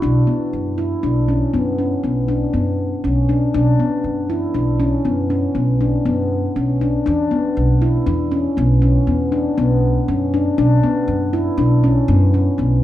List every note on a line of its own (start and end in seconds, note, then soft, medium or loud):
0.02 0.22 B1 medium
0.02 0.22 D4 medium
0.27 0.67 B3 medium
0.53 0.92 F#2 medium
0.78 0.98 E4 medium
1.03 1.42 B1 medium
1.03 1.23 D4 medium
1.28 1.48 C#4 medium
1.54 1.92 F#2 medium
1.54 1.73 B3 medium
1.78 1.98 C#4 medium
2.04 2.43 B1 medium
2.04 2.23 B3 medium
2.28 2.48 D4 medium
2.54 2.92 F#2 medium
2.54 2.93 B3 medium
3.04 3.43 B1 medium
3.04 3.24 C#4 medium
3.29 3.49 D4 medium
3.54 3.74 B1 medium
3.54 3.74 D4 medium
3.80 4.19 B3 medium
4.04 4.43 F#2 medium
4.30 4.49 E4 medium
4.54 4.93 B1 medium
4.54 4.74 D4 medium
4.80 5.00 C#4 medium
5.05 5.44 F#2 medium
5.05 5.25 B3 medium
5.30 5.50 C#4 medium
5.55 5.94 B1 medium
5.55 5.75 B3 medium
5.81 6.00 D4 medium
6.05 6.44 F#2 medium
6.05 6.45 B3 medium
6.56 6.95 B1 medium
6.56 6.76 C#4 medium
6.81 7.01 D4 medium
7.06 7.26 E2 medium
7.06 7.26 D4 medium
7.31 7.71 B3 medium
7.57 7.95 B1 medium
7.82 8.01 E4 medium
8.06 8.45 E2 medium
8.06 8.26 D4 medium
8.32 8.51 C#4 medium
8.57 8.96 B1 medium
8.57 8.77 B3 medium
8.82 9.02 C#4 medium
9.07 9.46 E2 medium
9.07 9.27 B3 medium
9.32 9.52 D4 medium
9.58 9.96 B1 medium
9.58 9.97 B3 medium
10.08 10.47 F#2 medium
10.08 10.28 C#4 medium
10.34 10.53 D4 medium
10.58 10.77 B1 medium
10.58 10.78 D4 medium
10.83 11.23 B3 medium
11.08 11.46 F#2 medium
11.33 11.53 E4 medium
11.57 11.96 B1 medium
11.57 11.78 D4 medium
11.84 12.03 C#4 medium
12.08 12.47 F#2 loud
12.08 12.28 B3 medium
12.34 12.54 C#4 medium
12.58 12.84 B1 medium
12.58 12.78 B3 medium